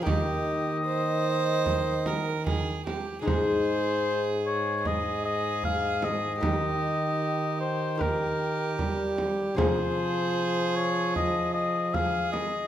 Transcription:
0.02 3.20 A#3 soft
0.02 2.42 D#5 medium
0.02 3.21 G5 soft
0.06 2.90 D#3 medium
0.06 2.94 D#3 medium
0.06 0.77 G4 medium
0.06 frame drum medium
0.85 2.08 C5 medium
1.66 frame drum soft
2.06 2.46 A#4 medium
2.06 frame drum medium
2.47 2.86 G#4 medium
2.47 frame drum medium
2.86 3.25 G4 soft
2.86 frame drum soft
3.21 6.38 G#2 soft
3.21 6.36 G#3 soft
3.21 6.36 D#4 soft
3.21 6.37 G#4 soft
3.21 4.80 G#4 medium
3.26 6.44 G#2 medium
3.26 4.41 C5 medium
3.26 frame drum medium
4.46 4.88 C#5 medium
4.85 6.39 G#4 medium
4.85 5.25 D#5 medium
4.85 frame drum soft
5.25 5.63 D#5 medium
5.63 6.06 F5 medium
5.63 frame drum soft
6.02 7.60 D#5 medium
6.02 frame drum soft
6.41 8.79 D#3 medium
6.41 8.75 D#3 soft
6.41 7.95 G4 soft
6.41 7.97 G4 medium
6.41 7.95 A#4 soft
6.41 frame drum medium
7.60 8.03 C5 medium
7.97 9.53 G4 soft
7.97 9.59 G4 medium
7.97 9.53 A#4 soft
7.97 9.19 A#4 medium
7.97 frame drum soft
8.78 9.54 G3 soft
8.78 9.60 G3 medium
8.78 frame drum soft
9.18 frame drum soft
9.55 12.67 C3 soft
9.55 12.45 F3 medium
9.55 12.67 F4 soft
9.55 11.93 G#4 medium
9.55 12.67 G#4 soft
9.55 10.77 C5 medium
9.55 frame drum medium
9.59 12.41 F3 soft
10.76 11.15 C#5 medium
11.16 11.53 D#5 medium
11.16 frame drum soft
11.54 11.95 D#5 medium
11.94 12.67 G#4 medium
11.94 12.32 F5 medium
11.94 frame drum medium
12.32 12.67 D#5 medium
12.32 frame drum soft

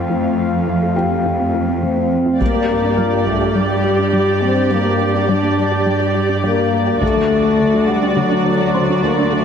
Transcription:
0.00 2.16 F2 soft
0.00 2.41 A3 medium
0.00 2.41 C4 medium
0.00 2.41 F4 medium
0.00 2.41 F5 medium
0.00 0.95 G5 soft
0.10 0.18 F3 medium
0.67 0.76 F3 medium
0.83 0.91 A3 medium
0.96 1.05 F4 soft
0.96 2.36 G4 soft
0.96 2.36 G5 soft
1.26 1.34 F3 medium
1.40 1.49 C4 soft
1.54 1.63 F4 soft
1.68 1.77 C4 soft
1.83 1.91 F3 medium
1.83 2.36 C4 medium
1.97 2.05 C4 soft
2.26 2.35 F4 medium
2.40 6.98 G2 soft
2.40 2.49 G3 medium
2.40 6.98 G3 medium
2.40 3.27 A#3 medium
2.40 6.98 D4 medium
2.40 6.98 G4 soft
2.40 6.98 G4 medium
2.40 6.98 D5 soft
2.40 6.98 D5 medium
2.40 taiko medium
2.55 2.63 A#3 medium
2.69 2.78 D4 medium
2.84 2.92 D4 soft
2.97 3.07 G3 medium
2.97 4.67 F4 soft
2.97 4.67 F5 soft
3.13 3.21 A#3 medium
3.27 3.55 A3 medium
3.27 taiko soft
3.42 3.50 G4 medium
3.54 4.40 G3 medium
3.54 3.64 G3 medium
3.70 3.79 G4 soft
3.84 3.93 G4 medium
3.99 4.07 D4 soft
4.13 4.22 G3 medium
4.27 4.36 G4 soft
4.42 4.51 A#3 soft
4.42 4.71 C4 medium
4.56 4.65 G4 medium
4.70 4.79 G3 medium
4.70 5.28 A#3 medium
4.85 4.94 A#3 medium
5.00 5.09 D4 medium
5.14 5.23 D4 soft
5.28 5.37 G3 medium
5.28 6.15 D4 medium
5.43 5.52 A#3 soft
5.72 5.80 G4 soft
5.86 5.95 G3 medium
6.00 6.09 G4 medium
6.14 6.23 G4 soft
6.29 6.38 D4 soft
6.44 6.52 G3 medium
6.44 6.98 A#3 medium
6.58 6.67 G4 soft
6.73 6.81 A#3 medium
6.87 6.96 G4 medium
7.01 9.45 D2 soft
7.01 7.10 D3 medium
7.01 9.45 F#3 medium
7.01 7.86 A3 medium
7.01 9.45 D4 medium
7.01 9.45 F#4 soft
7.01 9.45 A4 medium
7.01 9.45 D5 soft
7.01 9.45 D5 medium
7.01 taiko medium
7.16 7.24 F#3 medium
7.30 7.39 A3 medium
7.45 7.53 A3 medium
7.59 7.68 D3 medium
7.74 7.83 F#3 medium
7.88 8.17 G3 medium
7.88 9.45 F#5 soft
8.03 8.11 D4 soft
8.16 8.25 D3 medium
8.16 9.04 F#3 medium
8.31 8.40 D4 soft
8.45 8.54 D4 medium
8.60 8.69 A3 medium
8.74 8.83 D3 medium
8.74 9.45 C5 soft
8.74 9.45 C6 soft
8.90 8.98 D4 soft
9.03 9.12 F#3 medium
9.03 9.32 A#3 medium
9.18 9.27 D4 medium
9.32 9.41 D3 medium
9.32 9.45 A3 medium

